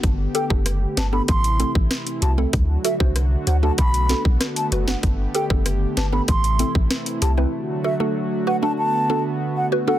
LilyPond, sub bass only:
\new Staff \with { instrumentName = "Sub bass" } { \clef bass \time 4/4 \key g \major \tempo 4 = 96 g,,8 r16 fis,,8. g,,8 a,,8. a,,16 r8 c,8 | d,8 r16 c,8. d,8 b,,8. b,,16 r8 fis,,8 | g,,8 r16 fis,,8. g,,8 a,,8. a,,16 r8 c,8 | r1 | }